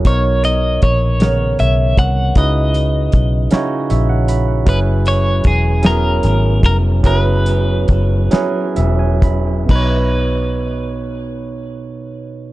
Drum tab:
CC |------|------|------|------|
HH |xxxxxx|xxxxxx|xxxxxx|xxxxxx|
SD |---o--|---o--|---o--|---o--|
BD |o-o--o|o-o---|o-o--o|o-o--o|

CC |x-----|
HH |------|
SD |------|
BD |o-----|